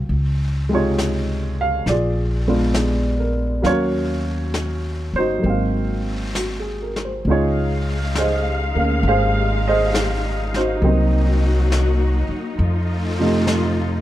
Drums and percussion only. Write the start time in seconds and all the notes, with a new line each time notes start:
0.09 brush sweep
0.98 snare, hi-hat pedal
1.87 brush sweep, snare
2.74 snare, hi-hat pedal
3.64 brush sweep, snare
4.54 snare, hi-hat pedal
5.44 brush sweep
6.35 snare, hi-hat pedal
6.96 snare
7.27 brush sweep
8.15 snare, hi-hat pedal
9.05 brush sweep
9.94 snare, hi-hat pedal
10.54 snare
10.83 brush sweep
11.72 snare, hi-hat pedal
12.60 brush sweep
13.47 snare, hi-hat pedal